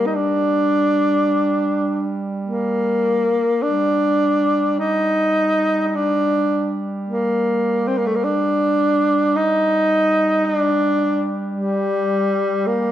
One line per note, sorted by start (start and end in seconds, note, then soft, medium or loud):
0.00 3.47 G3 soft
0.06 0.16 D#4 medium
0.14 2.16 D4 medium
2.44 3.64 A#3 medium
3.62 12.92 G3 soft
3.62 4.79 D4 medium
4.79 5.86 D#4 medium
5.86 5.96 D#4 medium
5.95 6.82 D4 medium
7.09 7.89 A#3 medium
7.88 7.99 C4 medium
7.98 8.07 A#3 medium
8.06 8.17 A3 medium
8.15 8.25 A#3 medium
8.24 9.37 D4 medium
9.36 10.47 D#4 medium
10.45 11.29 D4 medium
11.56 12.68 G3 medium
12.67 12.92 A#3 medium